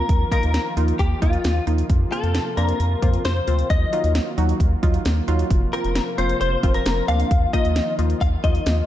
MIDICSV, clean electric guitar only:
0, 0, Header, 1, 2, 480
1, 0, Start_track
1, 0, Tempo, 451128
1, 98, Time_signature, 4, 2, 24, 8
1, 9429, End_track
2, 0, Start_track
2, 0, Title_t, "Clean electric guitar"
2, 0, Program_c, 0, 27
2, 0, Note_on_c, 0, 70, 93
2, 325, Note_off_c, 0, 70, 0
2, 338, Note_on_c, 0, 70, 86
2, 784, Note_off_c, 0, 70, 0
2, 1057, Note_on_c, 0, 67, 107
2, 1293, Note_off_c, 0, 67, 0
2, 1297, Note_on_c, 0, 65, 96
2, 1744, Note_off_c, 0, 65, 0
2, 2257, Note_on_c, 0, 69, 84
2, 2732, Note_off_c, 0, 69, 0
2, 2737, Note_on_c, 0, 70, 89
2, 3414, Note_off_c, 0, 70, 0
2, 3458, Note_on_c, 0, 72, 91
2, 3933, Note_off_c, 0, 72, 0
2, 3938, Note_on_c, 0, 75, 102
2, 4384, Note_off_c, 0, 75, 0
2, 6098, Note_on_c, 0, 70, 82
2, 6573, Note_off_c, 0, 70, 0
2, 6577, Note_on_c, 0, 72, 89
2, 6801, Note_off_c, 0, 72, 0
2, 6817, Note_on_c, 0, 72, 94
2, 7152, Note_off_c, 0, 72, 0
2, 7177, Note_on_c, 0, 70, 86
2, 7532, Note_off_c, 0, 70, 0
2, 7536, Note_on_c, 0, 77, 101
2, 8012, Note_off_c, 0, 77, 0
2, 8016, Note_on_c, 0, 75, 90
2, 8463, Note_off_c, 0, 75, 0
2, 8737, Note_on_c, 0, 77, 108
2, 8802, Note_off_c, 0, 77, 0
2, 8978, Note_on_c, 0, 75, 97
2, 9424, Note_off_c, 0, 75, 0
2, 9429, End_track
0, 0, End_of_file